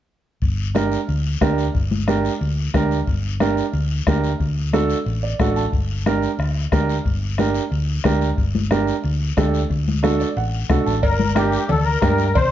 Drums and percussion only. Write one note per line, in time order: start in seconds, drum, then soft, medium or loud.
0.42 bombo low medium
0.42 long guiro medium
0.75 bombo rim medium
0.75 high conga medium
0.75 short guiro medium
0.92 short guiro medium
1.09 long guiro medium
1.41 bombo low medium
1.41 bombo rim medium
1.41 high conga medium
1.41 short guiro medium
1.58 short guiro medium
1.75 bombo low medium
1.75 long guiro medium
1.91 high conga medium
2.08 bombo rim medium
2.08 high conga medium
2.08 short guiro medium
2.25 short guiro medium
2.41 long guiro medium
2.74 bombo low medium
2.74 bombo rim medium
2.74 high conga medium
2.74 short guiro medium
2.91 short guiro medium
3.07 bombo low medium
3.07 long guiro medium
3.40 bombo rim medium
3.40 high conga medium
3.40 short guiro medium
3.57 short guiro medium
3.73 long guiro medium
4.07 bombo low medium
4.07 bombo rim medium
4.07 high conga medium
4.07 short guiro medium
4.24 short guiro medium
4.40 bombo low medium
4.40 long guiro medium
4.73 bombo rim medium
4.73 high conga medium
4.73 short guiro medium
4.90 short guiro medium
5.06 long guiro medium
5.39 bombo low medium
5.39 bombo rim medium
5.39 high conga medium
5.39 short guiro medium
5.56 short guiro medium
5.73 bombo low medium
5.73 long guiro medium
6.06 bombo rim medium
6.06 high conga medium
6.06 short guiro medium
6.22 short guiro medium
6.39 bombo rim medium
6.39 long guiro medium
6.72 bombo low medium
6.72 bombo rim medium
6.72 high conga medium
6.72 short guiro medium
6.90 short guiro medium
7.05 bombo low medium
7.05 long guiro medium
7.38 bombo rim medium
7.38 high conga medium
7.38 short guiro medium
7.55 short guiro medium
7.72 long guiro medium
8.04 bombo low medium
8.04 bombo rim medium
8.04 high conga medium
8.04 short guiro medium
8.21 short guiro medium
8.38 bombo low medium
8.38 long guiro medium
8.55 high conga medium
8.71 bombo rim medium
8.71 high conga medium
8.71 short guiro medium
8.87 short guiro medium
9.04 long guiro medium
9.37 bombo low medium
9.37 bombo rim medium
9.37 high conga medium
9.37 short guiro medium
9.54 short guiro medium
9.70 bombo low medium
9.70 long guiro medium
9.88 high conga medium
10.04 bombo rim medium
10.04 high conga medium
10.04 short guiro medium
10.20 short guiro medium
10.37 long guiro medium
10.69 bombo low medium
10.69 bombo rim medium
10.69 high conga medium
10.69 short guiro medium
10.87 short guiro medium
11.03 bombo low medium
11.03 cowbell loud
11.03 long guiro medium
11.19 high conga medium
11.36 bombo rim medium
11.36 cowbell medium
11.36 high conga medium
11.36 short guiro medium
11.52 short guiro medium
11.69 cowbell medium
11.69 low conga medium
11.69 long guiro medium
12.02 bombo low medium
12.02 bombo rim medium
12.02 cowbell medium
12.02 high conga medium
12.02 short guiro medium
12.18 short guiro medium
12.35 bombo low medium
12.35 cowbell loud
12.35 low conga medium
12.35 long guiro medium